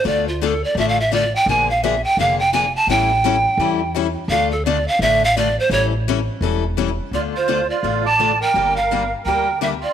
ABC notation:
X:1
M:4/4
L:1/16
Q:"Swing" 1/4=170
K:Dm
V:1 name="Pan flute"
d2 F2 A2 d2 (3e2 f2 e2 d2 g2 | _a2 f2 e2 g2 f2 g2 a2 =a2 | g12 z4 | f2 A2 d2 f2 e2 f2 d2 c2 |
^c2 z12 z2 | d2 c4 d4 a4 g2- | g2 f4 z2 g4 e2 d2 |]
V:2 name="Accordion"
z16 | z16 | z16 | z16 |
z16 | F2 F4 F4 d4 B2- | B2 B4 z2 B4 G2 F2 |]
V:3 name="Steel-string acoustic guitar"
[D,A,DFA]2 z2 [D,A,DFA] z3 [D,A,DFA]2 z2 [D,A,DFA] z3 | [D,F,B,D_A]2 z2 [D,F,B,DA] z3 [D,F,B,DA]2 z2 [D,F,B,DA] z3 | [E,G,^CEA]2 z2 [E,G,CEA] z3 [E,G,CEA]2 z2 [E,G,CEA] z3 | [D,A,DFA]2 z2 [D,A,DFA] z3 [D,A,DFA]2 z2 [D,A,DFA] z3 |
[E,G,^CEA]2 z2 [E,G,CEA] z3 [E,G,CEA]2 z2 [E,G,CEA] z3 | [D,A,DFA]2 z2 [D,A,DFA] z3 [D,A,DFA]2 z2 [D,A,DFA] z3 | [D,G,B,DG]2 z2 [D,G,B,DG] z3 [D,G,B,DG]2 z2 [D,G,B,DG] z3 |]
V:4 name="Upright bass" clef=bass
D,,8 A,,,8 | B,,,8 F,,,8 | A,,,8 E,,8 | D,,8 A,,,8 |
A,,,8 E,,,8 | D,,8 A,,,8 | G,,,8 D,,8 |]